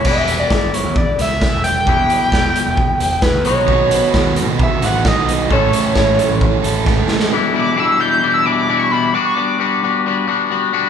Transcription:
<<
  \new Staff \with { instrumentName = "Analog synth lead" } { \time 4/4 \key e \dorian \tempo 4 = 132 e''8. d''8. cis''8 d''8 e''4 g''8~ | g''2. b'8 cis''8~ | cis''4. r8 e''8 fis''8 dis''4 | cis''2. r4 |
r8 d'''8 e'''16 e'''16 g'''8. e'''16 d'''8. cis'''16 b''8 | d'''16 cis'''16 d'''4. r2 | }
  \new Staff \with { instrumentName = "Distorted electric guitar" } { \time 4/4 \key e \dorian r1 | r1 | <dis b dis' fis'>2~ <dis b dis' fis'>8 <dis b dis' fis'>8 <dis b dis' fis'>4 | <e a cis' a'>2~ <e a cis' a'>8 <e a cis' a'>8 <e a cis' a'>4 |
r1 | r1 | }
  \new Staff \with { instrumentName = "Clean electric guitar" } { \clef bass \time 4/4 \key e \dorian <e, b, e g b e'>1 | <e, b, e g b e'>2.~ <e, b, e g b e'>8 <b, fis b dis' fis'>8~ | <b, fis b dis' fis'>2.~ <b, fis b dis' fis'>8 r8 | <a, e a cis' a'>1 |
<e, b, e g d' e'>8 <e, b, e g d' e'>8 <e, b, e g d' e'>8 <e, b, e g d' e'>8 <e, b, e g d' e'>8 <e, b, e g d' e'>8 <e, b, e g d' e'>8 <e, b, e g d' e'>8 | <g b d' fis'>8 <g b d' fis'>8 <g b d' fis'>8 <g b d' fis'>8 <g b d' fis'>8 <g b d' fis'>8 <g b d' fis'>8 <g b d' fis'>8 | }
  \new Staff \with { instrumentName = "Picked electric bass" } { \clef bass \time 4/4 \key e \dorian e,,4 g,,8. e,8 r16 cis,8. e,,8. | e,,8 r8 e,,8 r16 e,,8 r16 e,,8. e,16 b,,8~ | b,,4 dis,8. b,8 r16 a,,8. b,,8. | a,,8 r8 a,,8 r16 a,,8 r16 a,,8. fis,,8 r16 |
r1 | r1 | }
  \new DrumStaff \with { instrumentName = "Drums" } \drummode { \time 4/4 <cymc bd>8 hh8 <bd sn>8 hh8 bd8 <hh sn>8 <bd sn>8 hh8 | bd8 hh8 <bd sn>8 hh8 bd8 hh8 <bd sn>8 hh8 | bd8 hh8 <bd sn>8 hh8 bd8 <hh sn>8 <bd sn>8 hh8 | bd8 hh8 <bd sn>8 hh8 bd8 hh8 <bd sn>8 sn16 sn16 |
r4 r4 r4 r4 | r4 r4 r4 r4 | }
>>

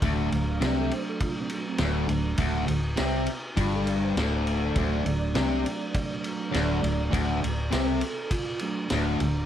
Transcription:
<<
  \new Staff \with { instrumentName = "Tonewheel organ" } { \time 4/4 \key d \mixolydian \tempo 4 = 101 r8 <e'' f''>8 d''16 a'16 c''16 a'16 f'16 c'16 d'16 c'16 <a d'>4~ | <a d'>4 r4 <e' f'>16 a'16 d''16 c''16 a'16 c''16 f''16 d''16 | c''16 d''16 d''2 r8 <cis'' d''>4~ | <cis'' d''>4 c''16 a'16 a'8 f'8 r4. | }
  \new Staff \with { instrumentName = "Tonewheel organ" } { \time 4/4 \key d \mixolydian <fis d'>1 | <fis a d'>8 r2. r8 | <fis a d'>1 | <fis a d'>8 r2 <fis a d'>8 r4 | }
  \new Staff \with { instrumentName = "Distorted electric guitar" } { \clef bass \time 4/4 \key d \mixolydian d,8 d,8 c8 r4. d,8 d,8 | d,8 d,8 c8 r8 g,4 d,4 | d,8 d,8 c8 r4. d,8 d,8 | d,8 d,8 c8 r4. d,8 d,8 | }
  \new Staff \with { instrumentName = "Fingered electric bass" } { \clef bass \time 4/4 \key d \mixolydian d,,8 d,,8 c,8 r4. d,,8 d,,8 | d,,8 d,,8 c,8 r8 g,,4 d,,4 | d,,8 d,,8 c,8 r4. d,,8 d,,8 | d,,8 d,,8 c,8 r4. d,,8 d,,8 | }
  \new DrumStaff \with { instrumentName = "Drums" } \drummode { \time 4/4 <bd cymr>8 cymr8 <cymr sn>8 cymr8 <bd cymr>8 cymr8 <cymr sn>8 cymr8 | <bd cymr>8 cymr8 <cymr sn>8 cymr8 <bd cymr>8 cymr8 <cymr sn>8 cymr8 | <bd cymr>8 cymr8 <cymr sn>8 cymr8 <bd cymr>8 cymr8 <cymr sn>8 cymr8 | <bd cymr>8 cymr8 <cymr sn>8 cymr8 <bd cymr>8 cymr8 <cymr sn>8 cymr8 | }
>>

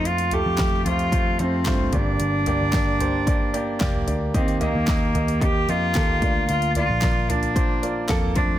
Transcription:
<<
  \new Staff \with { instrumentName = "Cello" } { \time 4/4 \key bes \major \tempo 4 = 112 f'8 g'4 f'4 c'4 d'8~ | d'2.~ d'8 r8 | c'8 bes4. g'8 f'4. | f'8 f'4 d'4. r8 d'8 | }
  \new Staff \with { instrumentName = "Grand piano" } { \time 4/4 \key bes \major <a f' c''>8 <a f' a'>8 <a f' g'>8 <a f' c''>8 <a f' c''>8 <a f' c''>8 <a f' c''>8 <bes g' d''>8~ | <bes g' d''>8 <bes g' d''>8 <bes g' d''>8 <bes g' c''>8 <bes g' d''>8 <bes g' d''>8 <bes g' d''>8 <bes g' d''>8 | <bes g' ees''>8 <bes g' ees''>8 <bes g' ees''>8 <bes g' ees''>8 <bes g' ees''>8 <bes g' ees''>8 <bes g' a'>8 <bes f' d''>8~ | <bes f' d''>8 <bes f' d''>8 <bes f' d''>8 <bes f' d''>8 <bes f' c''>8 <bes f' d''>8 <bes f' a'>8 <a f' c''>8 | }
  \new Staff \with { instrumentName = "Grand piano" } { \clef bass \time 4/4 \key bes \major r2. r8 g,8~ | g,4 r2. | ees4. r2 d8~ | d4 r2. | }
  \new Staff \with { instrumentName = "Picked electric bass" } { \clef bass \time 4/4 \key bes \major f,8. f,8. f,4 f,8 g,8 g,,8 | g,,8. g,,2~ g,,16 f,,8 d,8 | ees,8. ees,8. ees,4 f,8 ees,8 d,8 | d,8. bes,,2~ bes,,16 f,8 f,8 | }
  \new DrumStaff \with { instrumentName = "Drums" } \drummode { \time 4/4 hh16 hh16 <hh tomfh>8 <hc hh bd sn>8 <hh tomfh>16 hh16 <hh bd>8 hh8 <hc hh bd sn>16 tomfh16 <hh bd tomfh>8 | hh8 <hh tomfh>8 <hc hh bd sn>8 <hh tomfh>8 <hh bd>8 hh8 <hc hh bd sn>16 tomfh16 <hh tomfh>8 | <hh bd>16 hh16 <hh tomfh>8 <hc hh bd sn>8 <hh tomfh>16 hh16 <hh bd>8 hh8 <hc hh bd sn>16 tomfh16 <hh bd tomfh>8 | hh16 hh16 <hh tomfh>8 <hc hh bd sn>8 <hh tomfh>16 hh16 <hh bd>8 hh8 <hc hh bd sn>16 tomfh16 <hh bd tomfh>8 | }
>>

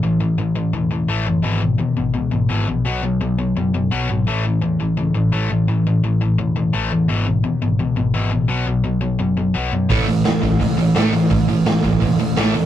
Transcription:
<<
  \new Staff \with { instrumentName = "Distorted electric guitar" } { \clef bass \time 4/4 \key e \major \tempo 4 = 170 r1 | r1 | r1 | r1 |
r1 | r1 | r1 | <a, e a>8 <a, e>8 <a, e>8 <a, e>8 <a, e>8 <a, e>8 <a, e a>8 <a, e>8 |
<a, e>8 <a, e>8 <a, e>8 <a, e>8 <a, e>8 <a, e>8 <a, e a>8 <a, e>8 | }
  \new Staff \with { instrumentName = "Overdriven electric guitar" } { \clef bass \time 4/4 \key e \major <a, e>8 <a, e>8 <a, e>8 <a, e>8 <a, e>8 <a, e>8 <a, e a>8 <a, e>8 | <e, b, e>8 <e, b,>8 <e, b,>8 <e, b,>8 <e, b,>8 <e, b,>8 <e, b, e>8 <e, b,>8 | <b, fis b>8 <b, fis>8 <b, fis>8 <b, fis>8 <b, fis>8 <b, fis>8 <b, fis b>8 <b, fis>8 | <a, e a>8 <a, e>8 <a, e>8 <a, e>8 <a, e>8 <a, e>8 <a, e a>8 <a, e>8 |
<a, e>8 <a, e>8 <a, e>8 <a, e>8 <a, e>8 <a, e>8 <a, e a>8 <a, e>8 | <e, b, e>8 <e, b,>8 <e, b,>8 <e, b,>8 <e, b,>8 <e, b,>8 <e, b, e>8 <e, b,>8 | <b, fis b>8 <b, fis>8 <b, fis>8 <b, fis>8 <b, fis>8 <b, fis>8 <b, fis b>8 <b, fis>8 | <a, e a>8 <a, e>8 <a, e>8 <a, e>8 <a, e>8 <a, e>8 <a, e a>8 <a, e>8 |
<a, e>8 <a, e>8 <a, e>8 <a, e>8 <a, e>8 <a, e>8 <a, e a>8 <a, e>8 | }
  \new Staff \with { instrumentName = "Picked electric bass" } { \clef bass \time 4/4 \key e \major a,,8 a,,8 a,,4 e,,4 a,,8 fis,,8 | gis,,4 dis,8 gis,,8 cis,8 gis,,8 gis,,8 bes,,8 | b,,8 b,,8 b,,4 fis,,4 b,,8 gis,,8 | a,,4 e,8 a,,8 cis,8 a,,8 a,,8 a,,8 |
a,,8 a,,8 a,,4 e,,4 a,,8 e,8 | gis,,4 dis,8 gis,,8 cis,8 gis,,8 gis,,8 a,,8 | b,,8 b,,8 b,,4 fis,,4 b,,8 fis,8 | a,,4 e,8 a,,8 cis,8 a,,8 a,,8 a,,8 |
a,,8 a,,8 a,,4 e,,4 a,,8 e,8 | }
  \new DrumStaff \with { instrumentName = "Drums" } \drummode { \time 4/4 r4 r4 r4 r4 | r4 r4 r4 r4 | r4 r4 r4 r4 | r4 r4 r4 r4 |
r4 r4 r4 r4 | r4 r4 r4 r4 | r4 r4 r4 r4 | <hho bd>8 hho8 <hho sn>8 <hho bd>16 bd16 <hho bd>8 hho8 <hho sn>8 hho8 |
<hho bd>8 hho8 <hho sn>8 <hho bd>16 bd16 <hho bd>8 hho8 <hho sn>8 hho8 | }
>>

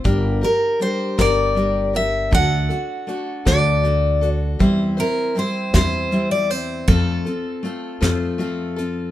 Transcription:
<<
  \new Staff \with { instrumentName = "Steel-string acoustic guitar" } { \time 6/8 \key g \dorian \tempo 4. = 53 r8 bes'8 c''8 d''4 e''8 | fis''4. d''4 r8 | r8 bes'8 c''8 c''8. d''16 c''8 | a'2 r4 | }
  \new Staff \with { instrumentName = "Steel-string acoustic guitar" } { \time 6/8 \key g \dorian <g d' g' bes'>8 <d' g' bes'>8 <g d' g' bes'>8 <g d' g' bes'>8 <g d' g' bes'>8 <d' g' bes'>8 | <d a d' fis' a'>8 <d' fis' a'>8 <a d' fis' a'>8 <d a d' fis' a'>8 <a d' fis' a'>8 <d' fis' a'>8 | <e g c' e' c''>8 <c' e' c''>8 <g c' e' c''>8 <e g c' e' c''>8 <g c' e' c''>8 <c' e' c''>8 | <f a c' f' a'>8 <c' f' a'>8 <a c' f' a'>8 <f a c' f' a'>8 <a c' f' a'>8 <c' f' a'>8 | }
  \new Staff \with { instrumentName = "Upright bass" } { \clef bass \time 6/8 \key g \dorian g,,8 r4 g,,4. | d,8 r4 d,4. | e,8 r4 e,4. | f,8 r4 f,4. | }
  \new DrumStaff \with { instrumentName = "Drums" } \drummode { \time 6/8 <hh bd>8 hh8 hh8 <hh bd sn>8 hh8 hh8 | <hh bd>8 hh8 hh8 <hh bd sn>8 hh8 hh8 | <hh bd>8 hh8 hh8 <hh bd sn>8 hh8 hh8 | <hh bd>8 hh8 hh8 <hh sn>8 hh8 hh8 | }
>>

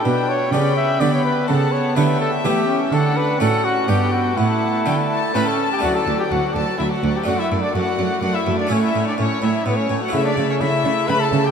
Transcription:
<<
  \new Staff \with { instrumentName = "Violin section" } { \time 3/4 \key d \major \tempo 4 = 125 << { g''2. | fis''4 e''2 | fis''4 fis''4 g''4 | fis''4 g''8 a''8 g''8 a''8 |
r2. | r2. | r2. | r2. | } \\ { r2. | r2. | r2. | r2 b''16 a''8 g''16 |
fis''16 a''8 g''16 fis''8 a''8 e''16 fis''8 g''16 | fis''16 e''8 d''16 fis''4 fis''16 e''8 d''16 | cis''16 e''8 d''16 cis''8 e''8 b'16 cis''8 fis''16 | e''16 d''8 cis''16 e''4 b''16 a''8 g''16 | } >> }
  \new Staff \with { instrumentName = "Violin section" } { \time 3/4 \key d \major g''4 b''2 | a''4 g''4 g''4 | fis''2. | a''2 a''8 r8 |
d''8 d''8 d''8 d''8 d''8 d''8 | d''8 d''8 d''8 d''8 d''8 d''8 | cis''8 cis''8 cis''8 cis''8 cis''8 cis''8 | e''8 e''8 e''8 e''8 e''8 e''8 | }
  \new Staff \with { instrumentName = "Trumpet" } { \time 3/4 \key d \major b'8 cis''8 d''8 e''8 d''16 cis''16 b'8 | a'8 cis''8 b'8 a'8 g'8. r16 | a'8 b'8 a'8 fis'8 g'8 fis'8 | e'2 b'16 a'8 g'16 |
fis'16 a'8 g'16 fis'8 a'8 e'16 fis'8 g'16 | fis'16 e'8 d'16 fis'4 fis'16 e'8 d'16 | cis'16 e'8 d'16 cis'8 e'8 b16 cis'8 fis'16 | e'16 d'8 cis'16 e'4 b'16 a'8 g'16 | }
  \new Staff \with { instrumentName = "Viola section" } { \time 3/4 \key d \major d'4 cis'4 b4~ | b2 a8 cis'8 | d'4 cis'4 b4 | a2 cis'8 r8 |
fis8 fis8 fis8 fis8 fis8 fis8 | a8 a8 a8 a8 a8 a8 | a8 a8 a8 a8 a8 a8 | a8 a8 a8 a8 a8 a8 | }
  \new Staff \with { instrumentName = "Harpsichord" } { \time 3/4 \key d \major r4 <b g'>4 <b g'>4 | r4 <a e' g'>4 <a e' g'>4 | r4 <a d' fis'>4 <b d'>4 | r4 <a d'>4 <a cis' e'>4 |
<a d' fis'>2. | <a d'>2. | <a cis' e'>2. | <a e'>2. | }
  \new Staff \with { instrumentName = "Harpsichord" } { \clef bass \time 3/4 \key d \major b,4 cis4 d4 | cis4 d4 e4 | d4 a,4 g,4 | a,4 d4 a,4 |
d,8 d,8 d,8 d,8 d,8 d,8 | fis,8 fis,8 fis,8 fis,8 fis,8 fis,8 | a,8 a,8 a,8 a,8 a,8 a,8 | cis8 cis8 cis8 cis8 cis8 cis8 | }
  \new Staff \with { instrumentName = "Cello section" } { \clef bass \time 3/4 \key d \major b,4 cis4 d4 | cis4 d4 e4 | d4 a,4 g,4 | a,4 d4 a,4 |
d,8 d,8 d,8 d,8 d,8 d,8 | fis,8 fis,8 fis,8 fis,8 fis,8 fis,8 | a,8 a,8 a,8 a,8 a,8 a,8 | cis8 cis8 cis8 cis8 cis8 cis8 | }
>>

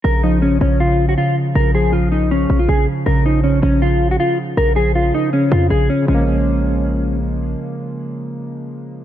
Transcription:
<<
  \new Staff \with { instrumentName = "Clean electric guitar" } { \time 4/4 \key bes \minor \tempo 4 = 159 bes'8 ees'8 des'8 des'8 f'8. ges'16 f'8 r8 | bes'8 aes'8 f'8 ees'8 des'8. f'16 aes'8 r8 | bes'8 ees'8 des'8 des'8 f'8. ges'16 f'8 r8 | bes'8 aes'8 f'8 ees'8 des'8 f'8 aes'8 des'8 |
des'2. r4 | r1 | }
  \new Staff \with { instrumentName = "Synth keys" } { \clef bass \time 4/4 \key bes \minor des8 f8 des4 des4 des4 | des8 f8 des4 des4 des4 | des8 f8 des4 des4 des4 | des8 f8 des4 des4 des4 |
<des f aes bes>1~ | <des f aes bes>1 | }
  \new Staff \with { instrumentName = "808-style bass" } { \clef bass \time 4/4 \key bes \minor bes,,4. bes,,4. r4 | bes,,2~ bes,,8 bes,,8 bes,,8 r8 | bes,,4. bes,,4. r4 | bes,,4. r4 f,8 bes,,8 r8 |
bes,,1 | r1 | }
>>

